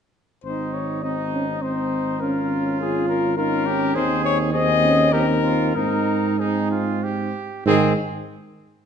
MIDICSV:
0, 0, Header, 1, 6, 480
1, 0, Start_track
1, 0, Key_signature, -4, "major"
1, 0, Tempo, 587659
1, 363, Time_signature, 3, 2, 24, 8
1, 4199, Tempo, 628272
1, 7037, End_track
2, 0, Start_track
2, 0, Title_t, "Cornet"
2, 0, Program_c, 0, 56
2, 360, Note_on_c, 0, 72, 50
2, 602, Note_on_c, 0, 73, 52
2, 614, Note_off_c, 0, 72, 0
2, 837, Note_on_c, 0, 75, 59
2, 849, Note_off_c, 0, 73, 0
2, 1321, Note_on_c, 0, 72, 57
2, 1333, Note_off_c, 0, 75, 0
2, 1799, Note_on_c, 0, 70, 59
2, 1811, Note_off_c, 0, 72, 0
2, 2282, Note_off_c, 0, 70, 0
2, 2290, Note_on_c, 0, 68, 62
2, 2512, Note_off_c, 0, 68, 0
2, 2517, Note_on_c, 0, 70, 69
2, 2751, Note_off_c, 0, 70, 0
2, 2759, Note_on_c, 0, 70, 84
2, 3222, Note_off_c, 0, 70, 0
2, 3233, Note_on_c, 0, 72, 75
2, 3464, Note_off_c, 0, 72, 0
2, 3471, Note_on_c, 0, 73, 86
2, 3578, Note_off_c, 0, 73, 0
2, 3701, Note_on_c, 0, 75, 99
2, 4187, Note_on_c, 0, 70, 89
2, 4199, Note_off_c, 0, 75, 0
2, 4666, Note_off_c, 0, 70, 0
2, 4669, Note_on_c, 0, 70, 70
2, 5157, Note_on_c, 0, 68, 53
2, 5168, Note_off_c, 0, 70, 0
2, 5639, Note_off_c, 0, 68, 0
2, 6131, Note_on_c, 0, 68, 86
2, 6333, Note_off_c, 0, 68, 0
2, 7037, End_track
3, 0, Start_track
3, 0, Title_t, "Trumpet"
3, 0, Program_c, 1, 56
3, 367, Note_on_c, 1, 63, 37
3, 815, Note_off_c, 1, 63, 0
3, 852, Note_on_c, 1, 63, 39
3, 1318, Note_off_c, 1, 63, 0
3, 1334, Note_on_c, 1, 63, 39
3, 1802, Note_off_c, 1, 63, 0
3, 1818, Note_on_c, 1, 65, 45
3, 2745, Note_off_c, 1, 65, 0
3, 2750, Note_on_c, 1, 65, 53
3, 2991, Note_on_c, 1, 67, 61
3, 3004, Note_off_c, 1, 65, 0
3, 3227, Note_on_c, 1, 68, 65
3, 3239, Note_off_c, 1, 67, 0
3, 3696, Note_off_c, 1, 68, 0
3, 3701, Note_on_c, 1, 68, 60
3, 4184, Note_off_c, 1, 68, 0
3, 4187, Note_on_c, 1, 67, 51
3, 4295, Note_off_c, 1, 67, 0
3, 4427, Note_on_c, 1, 65, 49
3, 4669, Note_on_c, 1, 63, 43
3, 4681, Note_off_c, 1, 65, 0
3, 5152, Note_off_c, 1, 63, 0
3, 5157, Note_on_c, 1, 63, 52
3, 5381, Note_off_c, 1, 63, 0
3, 5400, Note_on_c, 1, 65, 47
3, 5646, Note_on_c, 1, 67, 48
3, 5658, Note_off_c, 1, 65, 0
3, 6123, Note_off_c, 1, 67, 0
3, 6127, Note_on_c, 1, 60, 72
3, 6331, Note_off_c, 1, 60, 0
3, 7037, End_track
4, 0, Start_track
4, 0, Title_t, "Euphonium"
4, 0, Program_c, 2, 58
4, 367, Note_on_c, 2, 63, 39
4, 815, Note_off_c, 2, 63, 0
4, 847, Note_on_c, 2, 60, 36
4, 954, Note_off_c, 2, 60, 0
4, 1085, Note_on_c, 2, 61, 43
4, 1193, Note_off_c, 2, 61, 0
4, 1330, Note_on_c, 2, 60, 41
4, 1811, Note_on_c, 2, 61, 49
4, 1824, Note_off_c, 2, 60, 0
4, 2289, Note_off_c, 2, 61, 0
4, 2293, Note_on_c, 2, 65, 62
4, 2753, Note_off_c, 2, 65, 0
4, 2760, Note_on_c, 2, 63, 62
4, 2991, Note_off_c, 2, 63, 0
4, 2998, Note_on_c, 2, 61, 61
4, 3228, Note_on_c, 2, 63, 75
4, 3240, Note_off_c, 2, 61, 0
4, 3706, Note_off_c, 2, 63, 0
4, 3716, Note_on_c, 2, 60, 63
4, 3823, Note_off_c, 2, 60, 0
4, 3947, Note_on_c, 2, 61, 60
4, 4190, Note_off_c, 2, 61, 0
4, 4199, Note_on_c, 2, 63, 66
4, 4662, Note_off_c, 2, 63, 0
4, 4674, Note_on_c, 2, 63, 57
4, 5860, Note_off_c, 2, 63, 0
4, 6128, Note_on_c, 2, 51, 74
4, 6331, Note_off_c, 2, 51, 0
4, 7037, End_track
5, 0, Start_track
5, 0, Title_t, "French horn"
5, 0, Program_c, 3, 60
5, 370, Note_on_c, 3, 60, 36
5, 817, Note_off_c, 3, 60, 0
5, 850, Note_on_c, 3, 60, 37
5, 1317, Note_off_c, 3, 60, 0
5, 1322, Note_on_c, 3, 60, 47
5, 1811, Note_on_c, 3, 61, 46
5, 1823, Note_off_c, 3, 60, 0
5, 2755, Note_off_c, 3, 61, 0
5, 2760, Note_on_c, 3, 61, 61
5, 3227, Note_on_c, 3, 60, 61
5, 3239, Note_off_c, 3, 61, 0
5, 3703, Note_off_c, 3, 60, 0
5, 3707, Note_on_c, 3, 60, 65
5, 4187, Note_off_c, 3, 60, 0
5, 4199, Note_on_c, 3, 60, 66
5, 4663, Note_off_c, 3, 60, 0
5, 4674, Note_on_c, 3, 60, 53
5, 5147, Note_off_c, 3, 60, 0
5, 5163, Note_on_c, 3, 60, 48
5, 5871, Note_off_c, 3, 60, 0
5, 6135, Note_on_c, 3, 56, 76
5, 6335, Note_off_c, 3, 56, 0
5, 7037, End_track
6, 0, Start_track
6, 0, Title_t, "Tuba"
6, 0, Program_c, 4, 58
6, 362, Note_on_c, 4, 32, 47
6, 3222, Note_on_c, 4, 39, 69
6, 3234, Note_off_c, 4, 32, 0
6, 4663, Note_off_c, 4, 39, 0
6, 4668, Note_on_c, 4, 44, 52
6, 5856, Note_off_c, 4, 44, 0
6, 6121, Note_on_c, 4, 44, 83
6, 6327, Note_off_c, 4, 44, 0
6, 7037, End_track
0, 0, End_of_file